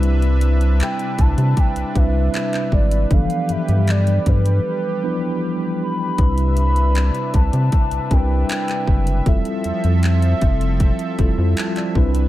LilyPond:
<<
  \new Staff \with { instrumentName = "Soft synth lead" } { \time 4/4 \key c \major \tempo 4 = 78 r4 g''8 a''8 g''8 e''4 d''8 | f''8 e''8 d''8 b'4. r8 b''8~ | b''8 b''4 a''4 g''4. | e''4 e''2 r4 | }
  \new Staff \with { instrumentName = "Analog synth pad" } { \time 4/4 \key c \major <c d' b' e''>1 | <g g' b'>1 | <c d' e''>1 | <f c' a'>2.~ <f c' a'>8 <c d' b'>8 | }
  \new Staff \with { instrumentName = "Tine electric piano" } { \time 4/4 \key c \major << { r1 | r1 | r1 | r2. a''16 d''8. | } \\ { <g c' d' e' b'>4 r4. <g c' d' e' b'>4 r8 | <e f a b d' a'>4. r4 <f b d' e' b'>4 r8 | <g c' d' e' b'>4. r4 <g c' d' e' bes' b'>4 r8 | <g c' e' f' a'>4. r4 <g c' e' f' a'>4 <g c' d' e' b'>8 | } >> }
  \new Staff \with { instrumentName = "Analog synth bass" } { \clef bass \time 4/4 \key c \major c,4~ c,16 r16 c,16 c16 r16 c,16 c,8 r8 aes,,8 | g,,16 r16 g,16 g,8. g,8 r2 | c,4~ c,16 r16 c,16 c16 r16 c,16 c,8 r8 fis,,8 | f,,16 r16 f,16 f,8. f,,8. r16 f,,16 f,16 r8 c,8 | }
  \new DrumStaff \with { instrumentName = "Drums" } \drummode { \time 4/4 hh16 hh16 hh16 hh16 <hc hh>16 hh16 <hh bd>16 hh16 <hh bd>16 hh16 <hh bd>8 <hc hh>16 <hc hh>16 bd16 hh16 | <hh bd>16 hh16 hh16 hh16 <hc hh>16 hh16 <hh bd>16 hh16 r4 r4 | <hh bd>16 hh16 hh16 hh16 <hc hh>16 hh16 <hh bd>16 hh16 <hh bd>16 hh16 <hh bd>8 <hc hh>16 <hc hh>16 bd16 hh16 | <hh bd>16 hh16 hh16 hh16 <hc hh>16 hh16 <hh bd>16 hh16 <hh bd>16 hh16 <hh bd>8 <hc hh>16 <hc hh>16 bd16 hh16 | }
>>